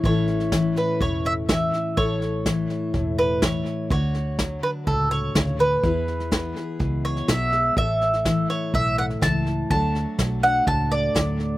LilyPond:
<<
  \new Staff \with { instrumentName = "Mandolin" } { \time 4/4 \key a \major \tempo 4 = 124 cis''4. b'8 cis''8 e''8 e''4 | cis''2~ cis''8 b'8 cis''4 | cis''4. b'8 a'8 cis''4 b'8~ | b'2~ b'8 cis''8 e''4 |
e''4. cis''8 e''8 fis''8 a''4 | a''4. fis''8 a''8 d''4. | }
  \new Staff \with { instrumentName = "Steel-string acoustic guitar" } { \clef bass \time 4/4 \key a \major << { <e cis' e' a'>4. e'2~ e'8 | a'4. e'2~ e'8 | fis'4. d'2~ d'8 | <b e' gis'>4. gis'2~ gis'8 |
a'4. e'2~ e'8 | <fis a d' fis'>4. d'2~ d'8 | } \\ { a,4 e4 a,4 e4 | a,4 e4 a,4 e4 | d4 fis4 a,4 cis8 d8 | e4 b4 b,4 fis8 gis8 |
a,4 e4 a,4 e4 | r4 fis4 a,4 fis4 | } >> }
  \new Staff \with { instrumentName = "Fingered electric bass" } { \clef bass \time 4/4 \key a \major a,,2 e,,2 | a,,2 e,,2 | d,2 cis,4 d,4 | e,2 cis,4 b,,4 |
a,,2 b,,4 cis,4 | d,4 b,,4 cis,4 d,4 | }
  \new DrumStaff \with { instrumentName = "Drums" } \drummode { \time 4/4 <bd sn>8 sn16 sn16 <hhp bd sn>8 sn8 <bd sn>8 sn8 <hhp bd sn>8 sn8 | <bd sn>8 sn8 <hhp bd sn>8 sn8 <bd sn>8 sn8 <hhp bd sn>8 sn8 | <bd sn>8 sn8 <hhp bd sn>8 sn8 <bd sn>8 sn8 <hhp bd sn>8 sn8 | <bd sn>8 sn16 sn16 <hhp bd sn>8 sn8 <bd sn>8 sn16 sn16 <hhp bd sn>8 sn8 |
<bd sn>8 sn16 sn16 <hhp bd sn>8 sn8 <bd sn>8 sn16 sn16 <hhp bd sn>8 sn8 | <bd sn>8 sn8 <hhp bd sn>8 sn8 <bd sn>8 sn8 <hhp bd sn>8 sn8 | }
>>